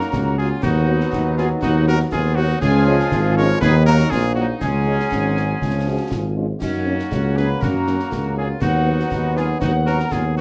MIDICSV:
0, 0, Header, 1, 9, 480
1, 0, Start_track
1, 0, Key_signature, 6, "major"
1, 0, Tempo, 500000
1, 597, Time_signature, 2, 2, 24, 8
1, 9992, End_track
2, 0, Start_track
2, 0, Title_t, "Piccolo"
2, 0, Program_c, 0, 72
2, 0, Note_on_c, 0, 82, 80
2, 366, Note_on_c, 0, 80, 81
2, 381, Note_off_c, 0, 82, 0
2, 605, Note_on_c, 0, 78, 84
2, 619, Note_off_c, 0, 80, 0
2, 1315, Note_off_c, 0, 78, 0
2, 1321, Note_on_c, 0, 80, 96
2, 1378, Note_off_c, 0, 80, 0
2, 1559, Note_on_c, 0, 78, 85
2, 1781, Note_off_c, 0, 78, 0
2, 1808, Note_on_c, 0, 82, 94
2, 1866, Note_off_c, 0, 82, 0
2, 2047, Note_on_c, 0, 80, 84
2, 2105, Note_off_c, 0, 80, 0
2, 2283, Note_on_c, 0, 78, 95
2, 2341, Note_off_c, 0, 78, 0
2, 2525, Note_on_c, 0, 80, 108
2, 3203, Note_off_c, 0, 80, 0
2, 3241, Note_on_c, 0, 85, 110
2, 3299, Note_off_c, 0, 85, 0
2, 3485, Note_on_c, 0, 83, 112
2, 3705, Note_off_c, 0, 83, 0
2, 3721, Note_on_c, 0, 82, 104
2, 3942, Note_off_c, 0, 82, 0
2, 3960, Note_on_c, 0, 80, 94
2, 4017, Note_off_c, 0, 80, 0
2, 4191, Note_on_c, 0, 78, 88
2, 4249, Note_off_c, 0, 78, 0
2, 4438, Note_on_c, 0, 80, 87
2, 6079, Note_off_c, 0, 80, 0
2, 6363, Note_on_c, 0, 78, 82
2, 7062, Note_on_c, 0, 83, 83
2, 7076, Note_off_c, 0, 78, 0
2, 7320, Note_on_c, 0, 82, 80
2, 7335, Note_off_c, 0, 83, 0
2, 8031, Note_off_c, 0, 82, 0
2, 8037, Note_on_c, 0, 80, 88
2, 8094, Note_off_c, 0, 80, 0
2, 8268, Note_on_c, 0, 78, 79
2, 8954, Note_off_c, 0, 78, 0
2, 8998, Note_on_c, 0, 80, 85
2, 9056, Note_off_c, 0, 80, 0
2, 9246, Note_on_c, 0, 78, 86
2, 9484, Note_on_c, 0, 82, 94
2, 9498, Note_off_c, 0, 78, 0
2, 9709, Note_off_c, 0, 82, 0
2, 9715, Note_on_c, 0, 80, 72
2, 9773, Note_off_c, 0, 80, 0
2, 9953, Note_on_c, 0, 78, 79
2, 9992, Note_off_c, 0, 78, 0
2, 9992, End_track
3, 0, Start_track
3, 0, Title_t, "Cornet"
3, 0, Program_c, 1, 56
3, 0, Note_on_c, 1, 70, 94
3, 355, Note_off_c, 1, 70, 0
3, 363, Note_on_c, 1, 68, 102
3, 470, Note_off_c, 1, 68, 0
3, 599, Note_on_c, 1, 66, 95
3, 1279, Note_off_c, 1, 66, 0
3, 1332, Note_on_c, 1, 68, 94
3, 1436, Note_off_c, 1, 68, 0
3, 1554, Note_on_c, 1, 66, 90
3, 1779, Note_off_c, 1, 66, 0
3, 1806, Note_on_c, 1, 70, 118
3, 1912, Note_off_c, 1, 70, 0
3, 2039, Note_on_c, 1, 68, 106
3, 2260, Note_on_c, 1, 66, 123
3, 2274, Note_off_c, 1, 68, 0
3, 2500, Note_off_c, 1, 66, 0
3, 2506, Note_on_c, 1, 68, 105
3, 3228, Note_on_c, 1, 73, 119
3, 3242, Note_off_c, 1, 68, 0
3, 3460, Note_off_c, 1, 73, 0
3, 3466, Note_on_c, 1, 71, 111
3, 3694, Note_off_c, 1, 71, 0
3, 3706, Note_on_c, 1, 70, 127
3, 3938, Note_on_c, 1, 68, 122
3, 3952, Note_off_c, 1, 70, 0
3, 4172, Note_off_c, 1, 68, 0
3, 4178, Note_on_c, 1, 66, 94
3, 4290, Note_off_c, 1, 66, 0
3, 4422, Note_on_c, 1, 68, 98
3, 6072, Note_off_c, 1, 68, 0
3, 6343, Note_on_c, 1, 66, 85
3, 7072, Note_on_c, 1, 71, 101
3, 7086, Note_off_c, 1, 66, 0
3, 7311, Note_on_c, 1, 70, 85
3, 7325, Note_off_c, 1, 71, 0
3, 8034, Note_off_c, 1, 70, 0
3, 8039, Note_on_c, 1, 68, 93
3, 8146, Note_off_c, 1, 68, 0
3, 8267, Note_on_c, 1, 66, 98
3, 8995, Note_on_c, 1, 68, 100
3, 9010, Note_off_c, 1, 66, 0
3, 9217, Note_off_c, 1, 68, 0
3, 9223, Note_on_c, 1, 66, 92
3, 9334, Note_off_c, 1, 66, 0
3, 9467, Note_on_c, 1, 70, 101
3, 9715, Note_on_c, 1, 68, 98
3, 9729, Note_off_c, 1, 70, 0
3, 9953, Note_off_c, 1, 68, 0
3, 9958, Note_on_c, 1, 66, 96
3, 9992, Note_off_c, 1, 66, 0
3, 9992, End_track
4, 0, Start_track
4, 0, Title_t, "Woodwind section"
4, 0, Program_c, 2, 71
4, 0, Note_on_c, 2, 66, 84
4, 316, Note_off_c, 2, 66, 0
4, 361, Note_on_c, 2, 65, 88
4, 599, Note_off_c, 2, 65, 0
4, 601, Note_on_c, 2, 63, 97
4, 1280, Note_off_c, 2, 63, 0
4, 1313, Note_on_c, 2, 65, 88
4, 1422, Note_off_c, 2, 65, 0
4, 1555, Note_on_c, 2, 63, 100
4, 1779, Note_off_c, 2, 63, 0
4, 1790, Note_on_c, 2, 66, 93
4, 1900, Note_off_c, 2, 66, 0
4, 2029, Note_on_c, 2, 65, 85
4, 2256, Note_off_c, 2, 65, 0
4, 2273, Note_on_c, 2, 63, 99
4, 2509, Note_on_c, 2, 65, 105
4, 2515, Note_off_c, 2, 63, 0
4, 3194, Note_off_c, 2, 65, 0
4, 3236, Note_on_c, 2, 70, 102
4, 3477, Note_off_c, 2, 70, 0
4, 3479, Note_on_c, 2, 68, 122
4, 3587, Note_off_c, 2, 68, 0
4, 3723, Note_on_c, 2, 66, 103
4, 3943, Note_off_c, 2, 66, 0
4, 3955, Note_on_c, 2, 65, 95
4, 4064, Note_off_c, 2, 65, 0
4, 4199, Note_on_c, 2, 63, 83
4, 4421, Note_off_c, 2, 63, 0
4, 4441, Note_on_c, 2, 61, 108
4, 6081, Note_off_c, 2, 61, 0
4, 6346, Note_on_c, 2, 61, 99
4, 7033, Note_off_c, 2, 61, 0
4, 7075, Note_on_c, 2, 68, 81
4, 7184, Note_off_c, 2, 68, 0
4, 7315, Note_on_c, 2, 66, 88
4, 7998, Note_off_c, 2, 66, 0
4, 8040, Note_on_c, 2, 65, 75
4, 8270, Note_on_c, 2, 63, 89
4, 8279, Note_off_c, 2, 65, 0
4, 8955, Note_off_c, 2, 63, 0
4, 8990, Note_on_c, 2, 65, 89
4, 9100, Note_off_c, 2, 65, 0
4, 9226, Note_on_c, 2, 63, 96
4, 9337, Note_off_c, 2, 63, 0
4, 9463, Note_on_c, 2, 66, 102
4, 9574, Note_off_c, 2, 66, 0
4, 9709, Note_on_c, 2, 65, 68
4, 9819, Note_off_c, 2, 65, 0
4, 9954, Note_on_c, 2, 63, 82
4, 9992, Note_off_c, 2, 63, 0
4, 9992, End_track
5, 0, Start_track
5, 0, Title_t, "Euphonium"
5, 0, Program_c, 3, 58
5, 0, Note_on_c, 3, 63, 85
5, 123, Note_on_c, 3, 61, 90
5, 137, Note_off_c, 3, 63, 0
5, 617, Note_on_c, 3, 59, 86
5, 631, Note_off_c, 3, 61, 0
5, 1094, Note_on_c, 3, 63, 111
5, 1108, Note_off_c, 3, 59, 0
5, 2045, Note_off_c, 3, 63, 0
5, 2061, Note_on_c, 3, 59, 96
5, 2496, Note_off_c, 3, 59, 0
5, 2522, Note_on_c, 3, 61, 111
5, 3005, Note_on_c, 3, 65, 114
5, 3019, Note_off_c, 3, 61, 0
5, 3462, Note_off_c, 3, 65, 0
5, 3468, Note_on_c, 3, 63, 113
5, 3950, Note_on_c, 3, 58, 100
5, 3964, Note_off_c, 3, 63, 0
5, 4435, Note_on_c, 3, 61, 81
5, 4449, Note_off_c, 3, 58, 0
5, 4868, Note_off_c, 3, 61, 0
5, 4916, Note_on_c, 3, 61, 93
5, 5641, Note_on_c, 3, 66, 85
5, 5656, Note_off_c, 3, 61, 0
5, 5881, Note_on_c, 3, 65, 75
5, 5895, Note_off_c, 3, 66, 0
5, 6217, Note_off_c, 3, 65, 0
5, 6358, Note_on_c, 3, 63, 98
5, 6844, Note_on_c, 3, 61, 81
5, 6858, Note_off_c, 3, 63, 0
5, 7786, Note_off_c, 3, 61, 0
5, 7792, Note_on_c, 3, 58, 86
5, 8241, Note_off_c, 3, 58, 0
5, 8278, Note_on_c, 3, 59, 85
5, 8759, Note_on_c, 3, 63, 96
5, 8773, Note_off_c, 3, 59, 0
5, 9234, Note_on_c, 3, 59, 90
5, 9249, Note_off_c, 3, 63, 0
5, 9992, Note_off_c, 3, 59, 0
5, 9992, End_track
6, 0, Start_track
6, 0, Title_t, "French horn section"
6, 0, Program_c, 4, 60
6, 361, Note_on_c, 4, 61, 70
6, 362, Note_on_c, 4, 58, 71
6, 365, Note_on_c, 4, 66, 69
6, 447, Note_off_c, 4, 58, 0
6, 447, Note_off_c, 4, 61, 0
6, 450, Note_off_c, 4, 66, 0
6, 840, Note_on_c, 4, 54, 75
6, 841, Note_on_c, 4, 66, 79
6, 842, Note_on_c, 4, 59, 74
6, 926, Note_off_c, 4, 54, 0
6, 927, Note_off_c, 4, 59, 0
6, 927, Note_off_c, 4, 66, 0
6, 1324, Note_on_c, 4, 66, 73
6, 1326, Note_on_c, 4, 54, 73
6, 1326, Note_on_c, 4, 59, 75
6, 1409, Note_off_c, 4, 66, 0
6, 1410, Note_off_c, 4, 54, 0
6, 1411, Note_off_c, 4, 59, 0
6, 1804, Note_on_c, 4, 59, 81
6, 1804, Note_on_c, 4, 66, 76
6, 1808, Note_on_c, 4, 54, 80
6, 1889, Note_off_c, 4, 59, 0
6, 1889, Note_off_c, 4, 66, 0
6, 1892, Note_off_c, 4, 54, 0
6, 2277, Note_on_c, 4, 54, 82
6, 2282, Note_on_c, 4, 66, 85
6, 2284, Note_on_c, 4, 59, 79
6, 2364, Note_off_c, 4, 54, 0
6, 2368, Note_off_c, 4, 66, 0
6, 2369, Note_off_c, 4, 59, 0
6, 2757, Note_on_c, 4, 56, 93
6, 2758, Note_on_c, 4, 61, 88
6, 2759, Note_on_c, 4, 53, 87
6, 2844, Note_off_c, 4, 56, 0
6, 2844, Note_off_c, 4, 61, 0
6, 2845, Note_off_c, 4, 53, 0
6, 3238, Note_on_c, 4, 53, 90
6, 3242, Note_on_c, 4, 56, 83
6, 3242, Note_on_c, 4, 61, 83
6, 3324, Note_off_c, 4, 53, 0
6, 3327, Note_off_c, 4, 56, 0
6, 3327, Note_off_c, 4, 61, 0
6, 3712, Note_on_c, 4, 54, 80
6, 3714, Note_on_c, 4, 58, 89
6, 3715, Note_off_c, 4, 54, 0
6, 3715, Note_on_c, 4, 54, 75
6, 3801, Note_off_c, 4, 58, 0
6, 3802, Note_off_c, 4, 54, 0
6, 4191, Note_on_c, 4, 58, 80
6, 4192, Note_on_c, 4, 54, 83
6, 4199, Note_off_c, 4, 54, 0
6, 4199, Note_on_c, 4, 54, 73
6, 4279, Note_off_c, 4, 58, 0
6, 4285, Note_off_c, 4, 54, 0
6, 4669, Note_on_c, 4, 61, 72
6, 4673, Note_on_c, 4, 54, 77
6, 4676, Note_on_c, 4, 56, 71
6, 4758, Note_off_c, 4, 61, 0
6, 4760, Note_off_c, 4, 54, 0
6, 4763, Note_off_c, 4, 56, 0
6, 5150, Note_on_c, 4, 56, 62
6, 5156, Note_on_c, 4, 54, 67
6, 5156, Note_on_c, 4, 61, 66
6, 5238, Note_off_c, 4, 56, 0
6, 5243, Note_off_c, 4, 54, 0
6, 5243, Note_off_c, 4, 61, 0
6, 5630, Note_on_c, 4, 53, 68
6, 5633, Note_on_c, 4, 61, 65
6, 5634, Note_on_c, 4, 56, 71
6, 5718, Note_off_c, 4, 53, 0
6, 5720, Note_off_c, 4, 61, 0
6, 5721, Note_off_c, 4, 56, 0
6, 6108, Note_on_c, 4, 53, 62
6, 6108, Note_on_c, 4, 56, 66
6, 6109, Note_on_c, 4, 61, 61
6, 6197, Note_off_c, 4, 53, 0
6, 6197, Note_off_c, 4, 56, 0
6, 6197, Note_off_c, 4, 61, 0
6, 6585, Note_on_c, 4, 58, 72
6, 6586, Note_on_c, 4, 54, 72
6, 6586, Note_on_c, 4, 61, 73
6, 6674, Note_off_c, 4, 58, 0
6, 6675, Note_off_c, 4, 54, 0
6, 6675, Note_off_c, 4, 61, 0
6, 7070, Note_on_c, 4, 61, 63
6, 7075, Note_on_c, 4, 58, 67
6, 7076, Note_on_c, 4, 54, 60
6, 7158, Note_off_c, 4, 61, 0
6, 7162, Note_off_c, 4, 58, 0
6, 7163, Note_off_c, 4, 54, 0
6, 7554, Note_on_c, 4, 54, 62
6, 7554, Note_on_c, 4, 58, 68
6, 7555, Note_on_c, 4, 61, 64
6, 7641, Note_off_c, 4, 54, 0
6, 7641, Note_off_c, 4, 58, 0
6, 7642, Note_off_c, 4, 61, 0
6, 8030, Note_on_c, 4, 58, 64
6, 8032, Note_on_c, 4, 54, 70
6, 8033, Note_on_c, 4, 61, 67
6, 8118, Note_off_c, 4, 58, 0
6, 8119, Note_off_c, 4, 54, 0
6, 8121, Note_off_c, 4, 61, 0
6, 8510, Note_on_c, 4, 59, 70
6, 8511, Note_off_c, 4, 59, 0
6, 8511, Note_on_c, 4, 59, 75
6, 8514, Note_on_c, 4, 54, 67
6, 8599, Note_off_c, 4, 59, 0
6, 8601, Note_off_c, 4, 54, 0
6, 8983, Note_on_c, 4, 54, 68
6, 8984, Note_on_c, 4, 59, 71
6, 8990, Note_off_c, 4, 59, 0
6, 8990, Note_on_c, 4, 59, 65
6, 9073, Note_off_c, 4, 54, 0
6, 9078, Note_off_c, 4, 59, 0
6, 9472, Note_on_c, 4, 59, 79
6, 9474, Note_off_c, 4, 59, 0
6, 9474, Note_on_c, 4, 59, 80
6, 9477, Note_on_c, 4, 54, 77
6, 9561, Note_off_c, 4, 59, 0
6, 9563, Note_off_c, 4, 54, 0
6, 9956, Note_on_c, 4, 59, 73
6, 9958, Note_on_c, 4, 54, 76
6, 9959, Note_off_c, 4, 59, 0
6, 9959, Note_on_c, 4, 59, 65
6, 9992, Note_off_c, 4, 54, 0
6, 9992, Note_off_c, 4, 59, 0
6, 9992, End_track
7, 0, Start_track
7, 0, Title_t, "Trombone section"
7, 0, Program_c, 5, 61
7, 0, Note_on_c, 5, 54, 81
7, 0, Note_on_c, 5, 58, 85
7, 565, Note_off_c, 5, 54, 0
7, 565, Note_off_c, 5, 58, 0
7, 592, Note_on_c, 5, 54, 96
7, 593, Note_on_c, 5, 59, 94
7, 2476, Note_off_c, 5, 54, 0
7, 2476, Note_off_c, 5, 59, 0
7, 2527, Note_on_c, 5, 53, 98
7, 2535, Note_on_c, 5, 56, 94
7, 3444, Note_off_c, 5, 53, 0
7, 3448, Note_off_c, 5, 56, 0
7, 3472, Note_on_c, 5, 54, 99
7, 3474, Note_on_c, 5, 51, 101
7, 4269, Note_off_c, 5, 51, 0
7, 4269, Note_off_c, 5, 54, 0
7, 4432, Note_on_c, 5, 56, 99
7, 4438, Note_on_c, 5, 54, 85
7, 5360, Note_off_c, 5, 54, 0
7, 5394, Note_on_c, 5, 53, 79
7, 6077, Note_off_c, 5, 56, 0
7, 6116, Note_off_c, 5, 53, 0
7, 6350, Note_on_c, 5, 58, 83
7, 6356, Note_on_c, 5, 54, 83
7, 8235, Note_off_c, 5, 58, 0
7, 8238, Note_off_c, 5, 54, 0
7, 8252, Note_on_c, 5, 54, 80
7, 8254, Note_on_c, 5, 59, 85
7, 9992, Note_off_c, 5, 54, 0
7, 9992, Note_off_c, 5, 59, 0
7, 9992, End_track
8, 0, Start_track
8, 0, Title_t, "Tuba"
8, 0, Program_c, 6, 58
8, 123, Note_on_c, 6, 37, 91
8, 520, Note_off_c, 6, 37, 0
8, 605, Note_on_c, 6, 39, 98
8, 1001, Note_off_c, 6, 39, 0
8, 1086, Note_on_c, 6, 39, 91
8, 1481, Note_off_c, 6, 39, 0
8, 1564, Note_on_c, 6, 39, 101
8, 1960, Note_off_c, 6, 39, 0
8, 2042, Note_on_c, 6, 39, 94
8, 2439, Note_off_c, 6, 39, 0
8, 2514, Note_on_c, 6, 37, 119
8, 2915, Note_off_c, 6, 37, 0
8, 2997, Note_on_c, 6, 32, 107
8, 3397, Note_off_c, 6, 32, 0
8, 3471, Note_on_c, 6, 39, 119
8, 3874, Note_off_c, 6, 39, 0
8, 3947, Note_on_c, 6, 34, 102
8, 4352, Note_off_c, 6, 34, 0
8, 4435, Note_on_c, 6, 37, 94
8, 4836, Note_off_c, 6, 37, 0
8, 4914, Note_on_c, 6, 32, 94
8, 5316, Note_off_c, 6, 32, 0
8, 5392, Note_on_c, 6, 37, 94
8, 5756, Note_off_c, 6, 37, 0
8, 5876, Note_on_c, 6, 32, 86
8, 6277, Note_off_c, 6, 32, 0
8, 6358, Note_on_c, 6, 42, 92
8, 6757, Note_off_c, 6, 42, 0
8, 6834, Note_on_c, 6, 37, 93
8, 7235, Note_off_c, 6, 37, 0
8, 7310, Note_on_c, 6, 42, 96
8, 7713, Note_off_c, 6, 42, 0
8, 7791, Note_on_c, 6, 37, 85
8, 8194, Note_off_c, 6, 37, 0
8, 8270, Note_on_c, 6, 39, 97
8, 8673, Note_off_c, 6, 39, 0
8, 8756, Note_on_c, 6, 39, 87
8, 9156, Note_off_c, 6, 39, 0
8, 9235, Note_on_c, 6, 39, 102
8, 9635, Note_off_c, 6, 39, 0
8, 9717, Note_on_c, 6, 39, 87
8, 9992, Note_off_c, 6, 39, 0
8, 9992, End_track
9, 0, Start_track
9, 0, Title_t, "Drums"
9, 2, Note_on_c, 9, 38, 52
9, 98, Note_off_c, 9, 38, 0
9, 125, Note_on_c, 9, 35, 85
9, 125, Note_on_c, 9, 38, 82
9, 221, Note_off_c, 9, 35, 0
9, 221, Note_off_c, 9, 38, 0
9, 606, Note_on_c, 9, 35, 91
9, 606, Note_on_c, 9, 38, 81
9, 606, Note_on_c, 9, 49, 32
9, 702, Note_off_c, 9, 35, 0
9, 702, Note_off_c, 9, 38, 0
9, 702, Note_off_c, 9, 49, 0
9, 964, Note_on_c, 9, 38, 53
9, 1060, Note_off_c, 9, 38, 0
9, 1084, Note_on_c, 9, 35, 80
9, 1084, Note_on_c, 9, 38, 79
9, 1180, Note_off_c, 9, 35, 0
9, 1180, Note_off_c, 9, 38, 0
9, 1324, Note_on_c, 9, 38, 58
9, 1420, Note_off_c, 9, 38, 0
9, 1561, Note_on_c, 9, 35, 89
9, 1561, Note_on_c, 9, 38, 78
9, 1657, Note_off_c, 9, 35, 0
9, 1657, Note_off_c, 9, 38, 0
9, 1802, Note_on_c, 9, 38, 61
9, 1898, Note_off_c, 9, 38, 0
9, 1916, Note_on_c, 9, 38, 55
9, 2012, Note_off_c, 9, 38, 0
9, 2036, Note_on_c, 9, 35, 81
9, 2036, Note_on_c, 9, 38, 82
9, 2132, Note_off_c, 9, 35, 0
9, 2132, Note_off_c, 9, 38, 0
9, 2516, Note_on_c, 9, 35, 95
9, 2516, Note_on_c, 9, 38, 88
9, 2516, Note_on_c, 9, 49, 36
9, 2612, Note_off_c, 9, 35, 0
9, 2612, Note_off_c, 9, 38, 0
9, 2612, Note_off_c, 9, 49, 0
9, 2874, Note_on_c, 9, 38, 58
9, 2970, Note_off_c, 9, 38, 0
9, 2991, Note_on_c, 9, 35, 83
9, 2991, Note_on_c, 9, 38, 87
9, 3087, Note_off_c, 9, 35, 0
9, 3087, Note_off_c, 9, 38, 0
9, 3237, Note_on_c, 9, 38, 48
9, 3333, Note_off_c, 9, 38, 0
9, 3473, Note_on_c, 9, 35, 98
9, 3473, Note_on_c, 9, 38, 91
9, 3569, Note_off_c, 9, 35, 0
9, 3569, Note_off_c, 9, 38, 0
9, 3715, Note_on_c, 9, 38, 62
9, 3811, Note_off_c, 9, 38, 0
9, 3833, Note_on_c, 9, 38, 60
9, 3929, Note_off_c, 9, 38, 0
9, 3954, Note_on_c, 9, 35, 86
9, 3954, Note_on_c, 9, 38, 84
9, 4050, Note_off_c, 9, 35, 0
9, 4050, Note_off_c, 9, 38, 0
9, 4430, Note_on_c, 9, 35, 87
9, 4430, Note_on_c, 9, 38, 83
9, 4430, Note_on_c, 9, 49, 37
9, 4526, Note_off_c, 9, 35, 0
9, 4526, Note_off_c, 9, 38, 0
9, 4526, Note_off_c, 9, 49, 0
9, 4797, Note_on_c, 9, 38, 57
9, 4893, Note_off_c, 9, 38, 0
9, 4914, Note_on_c, 9, 35, 78
9, 4914, Note_on_c, 9, 38, 73
9, 5010, Note_off_c, 9, 35, 0
9, 5010, Note_off_c, 9, 38, 0
9, 5151, Note_on_c, 9, 38, 52
9, 5247, Note_off_c, 9, 38, 0
9, 5393, Note_on_c, 9, 35, 79
9, 5393, Note_on_c, 9, 38, 68
9, 5489, Note_off_c, 9, 35, 0
9, 5489, Note_off_c, 9, 38, 0
9, 5871, Note_on_c, 9, 35, 84
9, 5871, Note_on_c, 9, 38, 83
9, 5967, Note_off_c, 9, 35, 0
9, 5967, Note_off_c, 9, 38, 0
9, 6353, Note_on_c, 9, 35, 88
9, 6353, Note_on_c, 9, 38, 80
9, 6353, Note_on_c, 9, 49, 57
9, 6449, Note_off_c, 9, 35, 0
9, 6449, Note_off_c, 9, 38, 0
9, 6449, Note_off_c, 9, 49, 0
9, 6713, Note_on_c, 9, 38, 55
9, 6809, Note_off_c, 9, 38, 0
9, 6833, Note_on_c, 9, 35, 80
9, 6833, Note_on_c, 9, 38, 77
9, 6929, Note_off_c, 9, 35, 0
9, 6929, Note_off_c, 9, 38, 0
9, 7074, Note_on_c, 9, 38, 50
9, 7170, Note_off_c, 9, 38, 0
9, 7319, Note_on_c, 9, 35, 92
9, 7319, Note_on_c, 9, 38, 82
9, 7415, Note_off_c, 9, 35, 0
9, 7415, Note_off_c, 9, 38, 0
9, 7553, Note_on_c, 9, 38, 60
9, 7649, Note_off_c, 9, 38, 0
9, 7675, Note_on_c, 9, 38, 51
9, 7771, Note_off_c, 9, 38, 0
9, 7797, Note_on_c, 9, 35, 79
9, 7797, Note_on_c, 9, 38, 84
9, 7893, Note_off_c, 9, 35, 0
9, 7893, Note_off_c, 9, 38, 0
9, 8272, Note_on_c, 9, 35, 93
9, 8272, Note_on_c, 9, 38, 78
9, 8272, Note_on_c, 9, 49, 31
9, 8368, Note_off_c, 9, 35, 0
9, 8368, Note_off_c, 9, 38, 0
9, 8368, Note_off_c, 9, 49, 0
9, 8635, Note_on_c, 9, 38, 53
9, 8731, Note_off_c, 9, 38, 0
9, 8749, Note_on_c, 9, 35, 79
9, 8749, Note_on_c, 9, 38, 82
9, 8845, Note_off_c, 9, 35, 0
9, 8845, Note_off_c, 9, 38, 0
9, 8992, Note_on_c, 9, 38, 57
9, 9088, Note_off_c, 9, 38, 0
9, 9232, Note_on_c, 9, 35, 98
9, 9232, Note_on_c, 9, 38, 84
9, 9328, Note_off_c, 9, 35, 0
9, 9328, Note_off_c, 9, 38, 0
9, 9474, Note_on_c, 9, 38, 57
9, 9570, Note_off_c, 9, 38, 0
9, 9595, Note_on_c, 9, 38, 51
9, 9691, Note_off_c, 9, 38, 0
9, 9712, Note_on_c, 9, 35, 82
9, 9712, Note_on_c, 9, 38, 89
9, 9808, Note_off_c, 9, 35, 0
9, 9808, Note_off_c, 9, 38, 0
9, 9992, End_track
0, 0, End_of_file